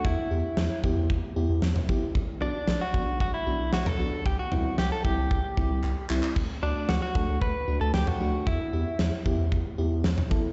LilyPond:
<<
  \new Staff \with { instrumentName = "Clean electric guitar" } { \time 4/4 \key e \minor \tempo 4 = 114 e'4. r2 r8 | r8 d'8. fis'8. fis'16 e'8. fis'16 a'8. | g'16 fis'8. g'16 a'16 g'2 r8 | r8 d'8 fis'16 fis'8. b'8. a'16 g'16 fis'8. |
e'4. r2 r8 | }
  \new Staff \with { instrumentName = "FM electric piano" } { \time 4/4 \key e \minor r8 <b e' g'>8 r8 <b e' g'>8 r8 <b e' g'>8 r8 <b e' g'>8 | r8 <b d' fis'>8 r8 <b d' fis'>8 r8 <b d' fis'>8 r8 <b d' fis'>8 | r8 <g c' e'>8 r8 <g c' e'>8 r8 <g c' e'>8 r8 <g c' e'>8 | r8 <a d' fis'>8 r8 <a d' a'>8 r8 <a d' fis'>8 r8 <a d' fis'>8 |
r8 <b e' g'>8 r8 <b e' g'>8 r8 <b e' g'>8 r8 <b e' a'>8 | }
  \new Staff \with { instrumentName = "Analog synth bass" } { \clef bass \time 4/4 \key e \minor e,16 r16 e,16 r16 e,16 r16 e,16 e,16 e,16 r16 e,16 e,16 e,16 r16 a,,16 r16 | b,,16 r16 b,,16 r16 b,,16 r16 b,,16 b,,16 b,,16 r16 b,,16 b,,16 b,,16 r16 b,,16 r16 | c,16 r16 c,16 r16 c,16 r16 c,16 c,16 c,16 r16 c,16 c,16 c,16 r16 c,16 r16 | d,16 r16 d,16 r16 d,16 r16 d,16 d,16 d,16 r16 d,16 d,16 d,16 r16 d,16 r16 |
e,16 r16 e,16 r16 e,16 r16 e,16 e,16 e,16 r16 e,16 e,16 e,16 r16 a,,16 r16 | }
  \new DrumStaff \with { instrumentName = "Drums" } \drummode { \time 4/4 bd4 sn8 bd8 bd4 sn16 toml16 bd8 | bd4 sn8 bd8 bd4 sn16 toml8. | bd8 toml8 sn8 bd8 bd8 bd8 hc8 hc16 hc16 | <cymc bd>4 sn8 bd8 bd4 sn16 toml8. |
bd4 sn8 bd8 bd4 sn16 toml16 bd8 | }
>>